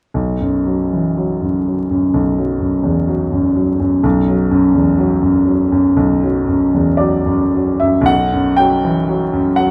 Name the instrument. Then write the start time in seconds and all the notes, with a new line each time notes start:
grand piano
0.14 B1
0.41 F#2
0.66 F#3
0.93 E3
1.17 F#3
1.42 F#2
1.66 F#3
1.91 F#2
2.14 B1
2.38 F#3
2.60 F#2
2.83 E2
3.08 F#3
3.31 F#2
3.55 F#3
3.80 F#2
4.03 B1
4.28 F#3
4.51 F#2
4.74 E2
4.98 F#3
5.22 F#2
5.47 F#3
5.72 F#2
5.97 B1
6.23 F#3
6.48 F#2
6.74 E2
6.97 F#3 D5
7.26 F#2
7.55 F#3
7.80 F#2 E5
8.01 B1
8.06 F#5
8.33 F#2
8.56 F#3 G5
8.84 E3
9.09 F#3
9.33 F#2
9.56 F#3 F#5